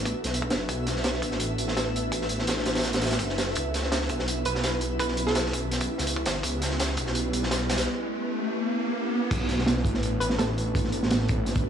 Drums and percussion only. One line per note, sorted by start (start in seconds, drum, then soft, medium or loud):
0.05 kick medium
0.05 closed hi-hat medium
0.24 snare soft
0.24 closed hi-hat medium
0.34 closed hi-hat medium
0.42 kick loud
0.50 snare loud
0.50 closed hi-hat medium
0.69 kick loud
0.69 closed hi-hat medium
0.87 snare soft
0.87 closed hi-hat medium
0.96 snare soft
1.04 snare loud
1.04 closed hi-hat medium
1.14 snare soft
1.22 kick medium
1.22 closed hi-hat medium
1.31 snare soft
1.40 closed hi-hat medium
1.58 closed hi-hat medium
1.68 snare soft
1.77 snare loud
1.77 closed hi-hat medium
1.96 closed hi-hat medium
2.12 kick loud
2.12 closed hi-hat medium
2.21 snare soft
2.29 closed hi-hat medium
2.39 snare soft
2.47 snare loud
2.47 closed hi-hat medium
2.57 snare medium
2.66 snare loud
2.66 closed hi-hat medium
2.75 snare medium
2.75 closed hi-hat medium
2.79 snare medium
2.79 closed hi-hat medium
2.83 snare medium
2.83 closed hi-hat medium
2.93 snare loud
2.93 closed hi-hat medium
3.02 snare medium
3.02 closed hi-hat medium
3.06 snare medium
3.06 closed hi-hat medium
3.11 snare loud
3.11 closed hi-hat medium
3.19 kick medium
3.19 closed hi-hat medium
3.29 snare soft
3.38 snare loud
3.38 closed hi-hat medium
3.47 snare soft
3.55 kick loud
3.55 closed hi-hat medium
3.74 snare soft
3.74 closed hi-hat medium
3.83 snare soft
3.92 snare loud
3.92 closed hi-hat medium
4.01 snare soft
4.09 kick medium
4.09 closed hi-hat medium
4.19 snare soft
4.28 closed hi-hat medium
4.45 closed hi-hat medium
4.55 snare soft
4.64 snare loud
4.64 closed hi-hat medium
4.81 closed hi-hat medium
4.99 kick loud
4.99 closed hi-hat medium
5.08 snare soft
5.17 closed hi-hat medium
5.27 snare soft
5.35 snare loud
5.35 closed hi-hat medium
5.46 snare medium
5.53 kick medium
5.53 closed hi-hat medium
5.71 snare soft
5.71 closed hi-hat medium
5.81 kick loud
5.81 closed hi-hat medium
5.98 snare soft
5.98 closed hi-hat medium
6.07 closed hi-hat medium
6.16 kick loud
6.26 snare loud
6.26 closed hi-hat medium
6.43 kick loud
6.43 closed hi-hat medium
6.62 snare medium
6.62 closed hi-hat medium
6.71 snare soft
6.80 snare loud
6.80 closed hi-hat loud
6.88 snare soft
6.97 kick medium
6.97 closed hi-hat medium
7.06 snare soft
7.15 closed hi-hat medium
7.33 closed hi-hat medium
7.43 snare soft
7.51 snare loud
7.51 closed hi-hat medium
7.70 snare loud
7.70 closed hi-hat medium
7.78 snare loud
7.78 closed hi-hat medium
9.31 kick loud
9.31 closed hi-hat medium
9.31 crash loud
9.49 snare soft
9.49 closed hi-hat medium
9.58 snare soft
9.66 snare loud
9.66 closed hi-hat medium
9.76 snare soft
9.85 kick medium
9.85 closed hi-hat medium
9.94 snare soft
10.03 closed hi-hat medium
10.21 closed hi-hat medium
10.30 snare soft
10.39 snare loud
10.39 closed hi-hat medium
10.58 closed hi-hat medium
10.75 kick loud
10.75 closed hi-hat medium
10.84 snare soft
10.92 closed hi-hat medium
11.03 snare soft
11.11 snare loud
11.11 closed hi-hat medium
11.20 snare soft
11.28 kick loud
11.28 closed hi-hat medium
11.46 snare soft
11.46 closed hi-hat medium
11.55 kick loud
11.55 closed hi-hat medium